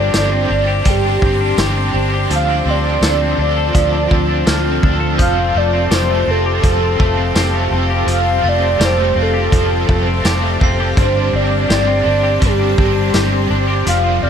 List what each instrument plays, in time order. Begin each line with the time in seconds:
Already playing: overdriven electric guitar G3 C4 D4 G4, clean electric guitar G3 C4 D4 G4, ambient pad G4 C5 D5 C6, soft synth lead D5
0.12 fingered electric bass G1, overdriven electric guitar G2 D3 G3 C4 D4 G4, clean electric guitar G4, snare, closed hi-hat, tambourine
0.17 soft synth lead D5
0.32 clean electric guitar C4
0.48 fingered electric bass G1, overdriven electric guitar C4 D4 G4, clean electric guitar D4
0.53 overdriven electric guitar G3
0.68 clean electric guitar G4
0.85 fingered electric bass G1, overdriven electric guitar G3 C4 D4, clean electric guitar G3, glockenspiel G5, kick, closed hi-hat
0.90 soft synth lead G4, overdriven electric guitar G4
1.05 clean electric guitar D4
1.21 fingered electric bass G1, clean electric guitar C4, overdriven electric guitar C4 D4 G4, kick
1.26 overdriven electric guitar G3
1.41 clean electric guitar D4
1.57 fingered electric bass G1, overdriven electric guitar G2 D3 G3 C4 D4 G4, clean electric guitar G4, snare, closed hi-hat, tambourine
1.77 clean electric guitar C4
1.93 fingered electric bass G1, overdriven electric guitar C4 D4 G4, clean electric guitar D4
1.98 overdriven electric guitar G3
2.14 clean electric guitar G4
2.29 fingered electric bass D2, overdriven electric guitar D3 F3 C4 D4 A4, clean electric guitar F3, ambient pad F4 A5, closed hi-hat
2.35 soft synth lead F5
2.49 clean electric guitar D4
2.65 fingered electric bass D2, clean electric guitar C4, overdriven electric guitar D4 A4
2.69 overdriven electric guitar C4, soft synth lead D5, glockenspiel C6
2.85 clean electric guitar D4
3.01 fingered electric bass D2, overdriven electric guitar D3 F3 C4 D4 A4, clean electric guitar A4, snare, closed hi-hat, tambourine
3.21 clean electric guitar C4
3.37 fingered electric bass D2, clean electric guitar D4, overdriven electric guitar D4 A4
3.42 overdriven electric guitar C4, soft synth lead D5
3.56 clean electric guitar A4
3.73 fingered electric bass D2, overdriven electric guitar F3 C4 D4, clean electric guitar F3, kick, closed hi-hat
3.78 overdriven electric guitar A4
3.93 clean electric guitar D4
4.09 fingered electric bass D2, clean electric guitar C4, overdriven electric guitar D4 A4, kick
4.14 overdriven electric guitar C4
4.28 clean electric guitar D4
4.46 fingered electric bass D2, overdriven electric guitar D3 F3 C4 D4 A4, clean electric guitar A4, glockenspiel F6, snare, closed hi-hat, tambourine
4.65 clean electric guitar C4
4.82 fingered electric bass D2, clean electric guitar D4, overdriven electric guitar D4 A4, kick
4.87 overdriven electric guitar C4
5.00 clean electric guitar A4
5.18 fingered electric bass F1, overdriven electric guitar F3 G3 C4 F4 A4, clean electric guitar F3, ambient pad G4 F5, soft synth lead F5, glockenspiel G6, kick, closed hi-hat
5.37 clean electric guitar C4
5.54 fingered electric bass F1, clean electric guitar A3, overdriven electric guitar F4 A4, soft synth lead D5
5.59 overdriven electric guitar C4
5.73 clean electric guitar C4
5.91 fingered electric bass F1, overdriven electric guitar F3 G3 C4 F4 A4, clean electric guitar G4, soft synth lead C5, snare, closed hi-hat, tambourine
6.10 clean electric guitar A3
6.26 fingered electric bass F1, clean electric guitar C4, overdriven electric guitar F4 A4
6.31 overdriven electric guitar C4, soft synth lead A4
6.46 clean electric guitar G4
6.62 fingered electric bass F1, clean electric guitar F3, overdriven electric guitar G3 C4 F4, kick, closed hi-hat
6.67 overdriven electric guitar A4
6.83 clean electric guitar C4
6.98 fingered electric bass F1, clean electric guitar A3, overdriven electric guitar F4 A4, kick
7.03 overdriven electric guitar C4
7.17 clean electric guitar C4
7.35 fingered electric bass F1, overdriven electric guitar F3 G3 C4 F4 A4, clean electric guitar G4, glockenspiel C7, snare, closed hi-hat, tambourine
7.54 clean electric guitar A3
7.70 fingered electric bass F1, clean electric guitar C4, overdriven electric guitar F4 A4
7.76 overdriven electric guitar C4
7.90 clean electric guitar G4
8.06 fingered electric bass F1, overdriven electric guitar F3 G3 C4 F4 A4, clean electric guitar F3, closed hi-hat
8.11 soft synth lead F5
8.26 clean electric guitar C4
8.41 fingered electric bass F1, clean electric guitar A3, overdriven electric guitar F4 A4, glockenspiel A6
8.47 overdriven electric guitar C4, soft synth lead D5
8.62 clean electric guitar C4
8.78 fingered electric bass F1, overdriven electric guitar F3 G3 C4 F4 A4, clean electric guitar G4, snare, closed hi-hat, tambourine
8.85 soft synth lead C5
8.98 clean electric guitar A3
9.14 fingered electric bass F1, clean electric guitar C4, overdriven electric guitar F4 A4
9.19 overdriven electric guitar C4, soft synth lead A4
9.34 clean electric guitar G4
9.51 fingered electric bass F1, clean electric guitar F3, overdriven electric guitar G3 C4 F4, kick, closed hi-hat
9.56 overdriven electric guitar A4
9.70 clean electric guitar C4
9.87 fingered electric bass F1, clean electric guitar A3, overdriven electric guitar F4 A4, kick
9.92 overdriven electric guitar C4
10.07 clean electric guitar C4
10.24 fingered electric bass F1, overdriven electric guitar F3 G3 C4 F4 A4, clean electric guitar G4, snare, closed hi-hat, tambourine
10.43 clean electric guitar A3
10.60 fingered electric bass F1, clean electric guitar C4, overdriven electric guitar F4 A4, glockenspiel C7, kick
10.65 overdriven electric guitar C4
10.80 clean electric guitar G4
10.96 fingered electric bass G1, overdriven electric guitar G2 D3 G3 C4, clean electric guitar G3, soft synth lead C5, ambient pad D5 C6, kick, closed hi-hat
11.00 overdriven electric guitar D4
11.16 clean electric guitar D4
11.32 fingered electric bass G1, clean electric guitar C4, overdriven electric guitar C4 D4, soft synth lead D5
11.38 overdriven electric guitar G3
11.51 clean electric guitar D4
11.69 fingered electric bass G1, overdriven electric guitar G2 D3 G3, clean electric guitar G4, soft synth lead D5, snare, closed hi-hat, tambourine
11.73 overdriven electric guitar C4 D4, glockenspiel A6
11.87 clean electric guitar C4
12.04 fingered electric bass G1, clean electric guitar D4, overdriven electric guitar D4
12.09 overdriven electric guitar G3 C4
12.23 clean electric guitar G4
12.41 fingered electric bass G1, overdriven electric guitar D3 G3, clean electric guitar G3, soft synth lead G4, kick, closed hi-hat
12.46 overdriven electric guitar C4 D4
12.59 clean electric guitar D4
12.78 fingered electric bass G1, clean electric guitar C4, overdriven electric guitar C4 D4, kick
12.83 overdriven electric guitar G3
12.96 clean electric guitar D4
13.14 fingered electric bass G1, overdriven electric guitar G2 D3 G3 C4, clean electric guitar G4, snare, closed hi-hat, tambourine
13.18 overdriven electric guitar D4
13.33 clean electric guitar C4
13.50 fingered electric bass G1, overdriven electric guitar C4 D4, clean electric guitar D4
13.56 overdriven electric guitar G3
13.68 clean electric guitar G4
13.86 fingered electric bass F1, overdriven electric guitar F2 C3 F3 A3 C4, clean electric guitar F3, soft synth lead F5, closed hi-hat
14.04 clean electric guitar F4
14.22 fingered electric bass F1, overdriven electric guitar A3 C4, clean electric guitar C4, soft synth lead D5, glockenspiel F6